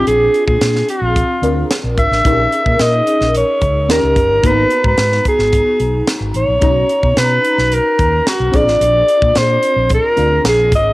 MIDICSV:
0, 0, Header, 1, 5, 480
1, 0, Start_track
1, 0, Tempo, 546946
1, 52, Time_signature, 4, 2, 24, 8
1, 9593, End_track
2, 0, Start_track
2, 0, Title_t, "Alto saxophone"
2, 0, Program_c, 0, 65
2, 63, Note_on_c, 0, 68, 93
2, 393, Note_off_c, 0, 68, 0
2, 413, Note_on_c, 0, 68, 69
2, 748, Note_off_c, 0, 68, 0
2, 788, Note_on_c, 0, 65, 80
2, 1468, Note_off_c, 0, 65, 0
2, 1745, Note_on_c, 0, 76, 99
2, 2471, Note_on_c, 0, 75, 91
2, 2484, Note_off_c, 0, 76, 0
2, 2943, Note_off_c, 0, 75, 0
2, 2960, Note_on_c, 0, 73, 82
2, 3431, Note_on_c, 0, 70, 79
2, 3444, Note_off_c, 0, 73, 0
2, 3918, Note_on_c, 0, 71, 94
2, 3931, Note_off_c, 0, 70, 0
2, 4267, Note_off_c, 0, 71, 0
2, 4281, Note_on_c, 0, 71, 72
2, 4604, Note_off_c, 0, 71, 0
2, 4637, Note_on_c, 0, 68, 79
2, 5313, Note_off_c, 0, 68, 0
2, 5587, Note_on_c, 0, 73, 82
2, 6303, Note_on_c, 0, 71, 78
2, 6316, Note_off_c, 0, 73, 0
2, 6791, Note_on_c, 0, 70, 75
2, 6804, Note_off_c, 0, 71, 0
2, 7262, Note_off_c, 0, 70, 0
2, 7268, Note_on_c, 0, 66, 70
2, 7513, Note_on_c, 0, 74, 94
2, 7526, Note_off_c, 0, 66, 0
2, 8230, Note_on_c, 0, 72, 89
2, 8243, Note_off_c, 0, 74, 0
2, 8700, Note_off_c, 0, 72, 0
2, 8725, Note_on_c, 0, 70, 81
2, 9155, Note_off_c, 0, 70, 0
2, 9202, Note_on_c, 0, 68, 84
2, 9410, Note_off_c, 0, 68, 0
2, 9438, Note_on_c, 0, 75, 91
2, 9593, Note_off_c, 0, 75, 0
2, 9593, End_track
3, 0, Start_track
3, 0, Title_t, "FM electric piano"
3, 0, Program_c, 1, 5
3, 0, Control_c, 1, 64, 127
3, 0, Note_on_c, 1, 60, 54
3, 0, Note_on_c, 1, 62, 51
3, 0, Note_on_c, 1, 65, 49
3, 0, Note_on_c, 1, 68, 64
3, 1224, Note_off_c, 1, 60, 0
3, 1226, Note_off_c, 1, 62, 0
3, 1230, Note_off_c, 1, 65, 0
3, 1235, Note_off_c, 1, 68, 0
3, 1250, Note_on_c, 1, 60, 44
3, 1253, Note_on_c, 1, 62, 37
3, 1255, Note_on_c, 1, 65, 36
3, 1257, Note_on_c, 1, 70, 44
3, 1970, Note_on_c, 1, 61, 55
3, 1972, Note_off_c, 1, 60, 0
3, 1974, Note_off_c, 1, 62, 0
3, 1975, Note_off_c, 1, 65, 0
3, 1975, Note_on_c, 1, 63, 53
3, 1976, Note_off_c, 1, 70, 0
3, 1981, Note_on_c, 1, 67, 42
3, 1987, Control_c, 1, 64, 0
3, 1988, Note_on_c, 1, 70, 61
3, 2035, Note_off_c, 1, 67, 0
3, 2040, Note_on_c, 1, 68, 53
3, 2155, Control_c, 1, 64, 127
3, 3384, Note_off_c, 1, 61, 0
3, 3386, Note_off_c, 1, 63, 0
3, 3393, Note_off_c, 1, 70, 0
3, 3411, Note_on_c, 1, 61, 59
3, 3414, Note_on_c, 1, 63, 58
3, 3418, Note_on_c, 1, 70, 63
3, 3419, Note_on_c, 1, 67, 53
3, 3420, Note_off_c, 1, 68, 0
3, 3428, Control_c, 1, 64, 0
3, 3554, Control_c, 1, 64, 127
3, 3878, Note_off_c, 1, 63, 0
3, 3884, Note_on_c, 1, 58, 39
3, 3888, Note_on_c, 1, 63, 50
3, 3893, Note_off_c, 1, 61, 0
3, 3895, Note_on_c, 1, 66, 50
3, 3897, Note_off_c, 1, 67, 0
3, 3897, Note_off_c, 1, 70, 0
3, 3904, Note_on_c, 1, 82, 61
3, 3906, Control_c, 1, 64, 0
3, 3939, Note_on_c, 1, 59, 57
3, 3947, Note_off_c, 1, 58, 0
3, 4047, Control_c, 1, 64, 127
3, 5776, Note_off_c, 1, 63, 0
3, 5779, Note_off_c, 1, 66, 0
3, 5784, Note_off_c, 1, 82, 0
3, 5798, Note_on_c, 1, 61, 54
3, 5801, Note_off_c, 1, 59, 0
3, 5807, Note_on_c, 1, 63, 51
3, 5811, Note_on_c, 1, 66, 49
3, 5819, Note_on_c, 1, 82, 61
3, 5827, Control_c, 1, 64, 0
3, 6004, Control_c, 1, 64, 127
3, 7451, Note_off_c, 1, 61, 0
3, 7455, Note_off_c, 1, 63, 0
3, 7458, Note_off_c, 1, 66, 0
3, 7462, Note_off_c, 1, 82, 0
3, 7473, Note_on_c, 1, 60, 54
3, 7482, Note_on_c, 1, 62, 47
3, 7490, Note_on_c, 1, 65, 51
3, 7494, Note_on_c, 1, 68, 54
3, 7505, Control_c, 1, 64, 0
3, 7642, Control_c, 1, 64, 127
3, 8892, Note_off_c, 1, 60, 0
3, 8896, Note_off_c, 1, 62, 0
3, 8901, Note_off_c, 1, 65, 0
3, 8903, Note_off_c, 1, 68, 0
3, 8920, Note_on_c, 1, 60, 43
3, 8924, Note_on_c, 1, 62, 42
3, 8927, Note_on_c, 1, 65, 40
3, 8929, Note_on_c, 1, 68, 47
3, 9593, Note_off_c, 1, 60, 0
3, 9593, Note_off_c, 1, 62, 0
3, 9593, Note_off_c, 1, 65, 0
3, 9593, Note_off_c, 1, 68, 0
3, 9593, End_track
4, 0, Start_track
4, 0, Title_t, "Fretless electric bass"
4, 0, Program_c, 2, 35
4, 62, Note_on_c, 2, 34, 79
4, 237, Note_off_c, 2, 34, 0
4, 416, Note_on_c, 2, 46, 82
4, 504, Note_off_c, 2, 46, 0
4, 538, Note_on_c, 2, 46, 78
4, 715, Note_off_c, 2, 46, 0
4, 890, Note_on_c, 2, 34, 74
4, 1070, Note_off_c, 2, 34, 0
4, 1246, Note_on_c, 2, 38, 66
4, 1428, Note_off_c, 2, 38, 0
4, 1614, Note_on_c, 2, 34, 76
4, 1733, Note_off_c, 2, 34, 0
4, 1733, Note_on_c, 2, 32, 63
4, 1823, Note_off_c, 2, 32, 0
4, 1853, Note_on_c, 2, 33, 74
4, 1943, Note_off_c, 2, 33, 0
4, 1976, Note_on_c, 2, 34, 84
4, 2154, Note_off_c, 2, 34, 0
4, 2334, Note_on_c, 2, 46, 77
4, 2424, Note_off_c, 2, 46, 0
4, 2459, Note_on_c, 2, 46, 80
4, 2636, Note_off_c, 2, 46, 0
4, 2818, Note_on_c, 2, 34, 83
4, 2996, Note_off_c, 2, 34, 0
4, 3173, Note_on_c, 2, 37, 80
4, 3413, Note_off_c, 2, 37, 0
4, 3413, Note_on_c, 2, 39, 80
4, 3503, Note_off_c, 2, 39, 0
4, 3539, Note_on_c, 2, 37, 69
4, 3627, Note_off_c, 2, 37, 0
4, 3651, Note_on_c, 2, 30, 65
4, 3778, Note_off_c, 2, 30, 0
4, 3778, Note_on_c, 2, 31, 79
4, 3866, Note_off_c, 2, 31, 0
4, 3893, Note_on_c, 2, 32, 86
4, 4073, Note_off_c, 2, 32, 0
4, 4249, Note_on_c, 2, 44, 89
4, 4341, Note_off_c, 2, 44, 0
4, 4372, Note_on_c, 2, 44, 76
4, 4552, Note_off_c, 2, 44, 0
4, 4729, Note_on_c, 2, 32, 79
4, 4910, Note_off_c, 2, 32, 0
4, 5089, Note_on_c, 2, 35, 76
4, 5270, Note_off_c, 2, 35, 0
4, 5445, Note_on_c, 2, 32, 62
4, 5538, Note_off_c, 2, 32, 0
4, 5567, Note_on_c, 2, 33, 58
4, 5659, Note_off_c, 2, 33, 0
4, 5689, Note_on_c, 2, 34, 60
4, 5780, Note_off_c, 2, 34, 0
4, 5809, Note_on_c, 2, 35, 68
4, 5990, Note_off_c, 2, 35, 0
4, 6170, Note_on_c, 2, 47, 86
4, 6261, Note_off_c, 2, 47, 0
4, 6293, Note_on_c, 2, 47, 80
4, 6472, Note_off_c, 2, 47, 0
4, 6655, Note_on_c, 2, 35, 74
4, 6833, Note_off_c, 2, 35, 0
4, 7014, Note_on_c, 2, 39, 75
4, 7192, Note_off_c, 2, 39, 0
4, 7372, Note_on_c, 2, 35, 70
4, 7461, Note_off_c, 2, 35, 0
4, 7489, Note_on_c, 2, 34, 55
4, 7616, Note_off_c, 2, 34, 0
4, 7616, Note_on_c, 2, 33, 69
4, 7704, Note_off_c, 2, 33, 0
4, 7730, Note_on_c, 2, 34, 80
4, 7909, Note_off_c, 2, 34, 0
4, 8090, Note_on_c, 2, 46, 83
4, 8180, Note_off_c, 2, 46, 0
4, 8217, Note_on_c, 2, 46, 89
4, 8394, Note_off_c, 2, 46, 0
4, 8569, Note_on_c, 2, 34, 80
4, 8748, Note_off_c, 2, 34, 0
4, 8932, Note_on_c, 2, 38, 80
4, 9110, Note_off_c, 2, 38, 0
4, 9164, Note_on_c, 2, 34, 88
4, 9408, Note_on_c, 2, 32, 69
4, 9421, Note_off_c, 2, 34, 0
4, 9587, Note_off_c, 2, 32, 0
4, 9593, End_track
5, 0, Start_track
5, 0, Title_t, "Drums"
5, 60, Note_on_c, 9, 42, 72
5, 148, Note_off_c, 9, 42, 0
5, 299, Note_on_c, 9, 42, 48
5, 387, Note_off_c, 9, 42, 0
5, 417, Note_on_c, 9, 36, 80
5, 505, Note_off_c, 9, 36, 0
5, 536, Note_on_c, 9, 42, 67
5, 539, Note_on_c, 9, 38, 95
5, 624, Note_off_c, 9, 42, 0
5, 626, Note_off_c, 9, 38, 0
5, 662, Note_on_c, 9, 38, 31
5, 750, Note_off_c, 9, 38, 0
5, 777, Note_on_c, 9, 42, 71
5, 864, Note_off_c, 9, 42, 0
5, 1017, Note_on_c, 9, 42, 74
5, 1018, Note_on_c, 9, 36, 72
5, 1105, Note_off_c, 9, 42, 0
5, 1106, Note_off_c, 9, 36, 0
5, 1256, Note_on_c, 9, 42, 55
5, 1344, Note_off_c, 9, 42, 0
5, 1499, Note_on_c, 9, 38, 116
5, 1500, Note_on_c, 9, 42, 82
5, 1586, Note_off_c, 9, 38, 0
5, 1587, Note_off_c, 9, 42, 0
5, 1735, Note_on_c, 9, 36, 84
5, 1735, Note_on_c, 9, 42, 67
5, 1822, Note_off_c, 9, 42, 0
5, 1823, Note_off_c, 9, 36, 0
5, 1863, Note_on_c, 9, 38, 30
5, 1951, Note_off_c, 9, 38, 0
5, 1974, Note_on_c, 9, 42, 76
5, 1975, Note_on_c, 9, 36, 93
5, 2062, Note_off_c, 9, 42, 0
5, 2063, Note_off_c, 9, 36, 0
5, 2215, Note_on_c, 9, 42, 55
5, 2303, Note_off_c, 9, 42, 0
5, 2335, Note_on_c, 9, 36, 77
5, 2422, Note_off_c, 9, 36, 0
5, 2451, Note_on_c, 9, 42, 69
5, 2454, Note_on_c, 9, 38, 79
5, 2539, Note_off_c, 9, 42, 0
5, 2541, Note_off_c, 9, 38, 0
5, 2694, Note_on_c, 9, 42, 67
5, 2782, Note_off_c, 9, 42, 0
5, 2815, Note_on_c, 9, 38, 32
5, 2903, Note_off_c, 9, 38, 0
5, 2937, Note_on_c, 9, 42, 73
5, 3024, Note_off_c, 9, 42, 0
5, 3171, Note_on_c, 9, 42, 52
5, 3174, Note_on_c, 9, 36, 78
5, 3259, Note_off_c, 9, 42, 0
5, 3262, Note_off_c, 9, 36, 0
5, 3421, Note_on_c, 9, 38, 114
5, 3422, Note_on_c, 9, 42, 85
5, 3509, Note_off_c, 9, 38, 0
5, 3510, Note_off_c, 9, 42, 0
5, 3652, Note_on_c, 9, 36, 76
5, 3653, Note_on_c, 9, 42, 59
5, 3740, Note_off_c, 9, 36, 0
5, 3740, Note_off_c, 9, 42, 0
5, 3891, Note_on_c, 9, 42, 80
5, 3892, Note_on_c, 9, 36, 105
5, 3979, Note_off_c, 9, 42, 0
5, 3980, Note_off_c, 9, 36, 0
5, 4128, Note_on_c, 9, 42, 50
5, 4216, Note_off_c, 9, 42, 0
5, 4250, Note_on_c, 9, 36, 88
5, 4338, Note_off_c, 9, 36, 0
5, 4366, Note_on_c, 9, 42, 63
5, 4368, Note_on_c, 9, 38, 91
5, 4454, Note_off_c, 9, 42, 0
5, 4456, Note_off_c, 9, 38, 0
5, 4492, Note_on_c, 9, 38, 29
5, 4580, Note_off_c, 9, 38, 0
5, 4608, Note_on_c, 9, 42, 65
5, 4610, Note_on_c, 9, 36, 66
5, 4696, Note_off_c, 9, 42, 0
5, 4698, Note_off_c, 9, 36, 0
5, 4729, Note_on_c, 9, 38, 32
5, 4817, Note_off_c, 9, 38, 0
5, 4849, Note_on_c, 9, 42, 72
5, 4853, Note_on_c, 9, 36, 74
5, 4937, Note_off_c, 9, 42, 0
5, 4941, Note_off_c, 9, 36, 0
5, 5087, Note_on_c, 9, 42, 48
5, 5174, Note_off_c, 9, 42, 0
5, 5331, Note_on_c, 9, 38, 110
5, 5332, Note_on_c, 9, 42, 84
5, 5419, Note_off_c, 9, 38, 0
5, 5420, Note_off_c, 9, 42, 0
5, 5566, Note_on_c, 9, 42, 62
5, 5654, Note_off_c, 9, 42, 0
5, 5805, Note_on_c, 9, 42, 66
5, 5810, Note_on_c, 9, 36, 102
5, 5893, Note_off_c, 9, 42, 0
5, 5898, Note_off_c, 9, 36, 0
5, 6048, Note_on_c, 9, 42, 52
5, 6136, Note_off_c, 9, 42, 0
5, 6171, Note_on_c, 9, 36, 76
5, 6259, Note_off_c, 9, 36, 0
5, 6290, Note_on_c, 9, 42, 78
5, 6293, Note_on_c, 9, 38, 85
5, 6378, Note_off_c, 9, 42, 0
5, 6380, Note_off_c, 9, 38, 0
5, 6534, Note_on_c, 9, 42, 69
5, 6622, Note_off_c, 9, 42, 0
5, 6656, Note_on_c, 9, 38, 29
5, 6744, Note_off_c, 9, 38, 0
5, 6773, Note_on_c, 9, 42, 77
5, 6861, Note_off_c, 9, 42, 0
5, 7010, Note_on_c, 9, 42, 52
5, 7013, Note_on_c, 9, 36, 73
5, 7098, Note_off_c, 9, 42, 0
5, 7101, Note_off_c, 9, 36, 0
5, 7256, Note_on_c, 9, 38, 94
5, 7257, Note_on_c, 9, 42, 79
5, 7344, Note_off_c, 9, 38, 0
5, 7345, Note_off_c, 9, 42, 0
5, 7489, Note_on_c, 9, 42, 63
5, 7491, Note_on_c, 9, 36, 81
5, 7577, Note_off_c, 9, 42, 0
5, 7579, Note_off_c, 9, 36, 0
5, 7616, Note_on_c, 9, 38, 34
5, 7703, Note_off_c, 9, 38, 0
5, 7733, Note_on_c, 9, 42, 77
5, 7821, Note_off_c, 9, 42, 0
5, 7971, Note_on_c, 9, 42, 54
5, 8059, Note_off_c, 9, 42, 0
5, 8091, Note_on_c, 9, 36, 85
5, 8179, Note_off_c, 9, 36, 0
5, 8208, Note_on_c, 9, 42, 73
5, 8211, Note_on_c, 9, 38, 91
5, 8296, Note_off_c, 9, 42, 0
5, 8299, Note_off_c, 9, 38, 0
5, 8448, Note_on_c, 9, 42, 66
5, 8536, Note_off_c, 9, 42, 0
5, 8685, Note_on_c, 9, 42, 74
5, 8692, Note_on_c, 9, 36, 79
5, 8773, Note_off_c, 9, 42, 0
5, 8780, Note_off_c, 9, 36, 0
5, 8926, Note_on_c, 9, 42, 49
5, 9014, Note_off_c, 9, 42, 0
5, 9171, Note_on_c, 9, 38, 107
5, 9172, Note_on_c, 9, 42, 75
5, 9259, Note_off_c, 9, 38, 0
5, 9260, Note_off_c, 9, 42, 0
5, 9408, Note_on_c, 9, 36, 74
5, 9408, Note_on_c, 9, 42, 68
5, 9496, Note_off_c, 9, 36, 0
5, 9496, Note_off_c, 9, 42, 0
5, 9593, End_track
0, 0, End_of_file